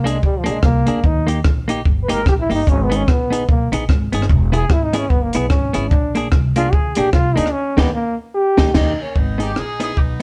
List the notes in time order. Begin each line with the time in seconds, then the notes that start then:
Already playing: C2 A#3
0.04 A#3 D4 G#4, closed hi-hat
0.10 G#3
0.23 D2 G3, kick
0.39 F3
0.44 A#1 A#3 D4 G#4, closed hi-hat
0.52 G#3
0.63 C2 A#3, kick, cross-stick
0.87 D2 A#3 D4 G#4, closed hi-hat
1.04 D#2 D#4, kick
1.27 A#3 D#4 G4, closed hi-hat
1.44 A#1, muted clean electric guitar stroke, kick, cross-stick
1.68 A#3 D#4 G4, closed hi-hat
1.85 G1, kick
2.03 B4
2.08 G#1 A#3 D#4 G4 A#4, closed hi-hat
2.26 A#1 G4, kick, cross-stick
2.41 E4
2.50 G1 A#3 D#4 G4, open hi-hat
2.55 D#4
2.67 G#1 C#4, kick, hi-hat pedal
2.83 B3
2.90 B3 D#4 G#4, closed hi-hat
2.96 C#4
3.07 B3, muted clean electric guitar stroke, kick, cross-stick
3.30 B3 D#4 G#4, closed hi-hat
3.49 B1 A#3, kick
3.72 A#1 B3 D#4 G#4, closed hi-hat
3.89 G#1, kick, cross-stick
4.12 G1 B3 D#4 G#4, closed hi-hat
4.22 cross-stick
4.29 E1, kick
4.52 B3 E4 G#4, closed hi-hat
4.70 G#1 E4, muted clean electric guitar stroke, kick, cross-stick
4.84 D#4
4.93 B3 C#4 E4 G#4, cross-stick, closed hi-hat
5.10 G1 B3, kick
5.22 A#3
5.33 B1 B3 E4 G#4, closed hi-hat
5.49 G#1 C#4, kick, cross-stick
5.73 G#1 B3 E4 G#4, closed hi-hat
5.89 A#1 D4, kick
6.15 A#3 D4 G#4, closed hi-hat
6.32 C2, muted clean electric guitar stroke, kick, cross-stick
6.56 A#3 D4 F4 G#4, closed hi-hat
6.73 D2 G#4, kick
6.95 A#1 A#3 D4 G4 G#4, closed hi-hat
7.13 C2 F4, kick, cross-stick
7.36 D2 A#3 D4 D#4 G#4, closed hi-hat
7.46 cross-stick
7.52 C#4
7.77 D#2 A#3 B3 D#4 G4, kick, snare, crash
7.93 A#3
8.35 G4
8.57 D#2 A#3 D#4 G4, kick, snare
8.74 D#2 A#3 D#4 G4, kick, snare, crash
9.02 A#3 C#4
9.16 G#1 B3 D#4, kick
9.38 B3 D#4 G#4, closed hi-hat
9.42 D#4 G4
9.56 A#1 D#4 G#4, cross-stick
9.80 B3 D#4 E4 G#4, cross-stick, closed hi-hat
9.97 B1 B3 D#4, kick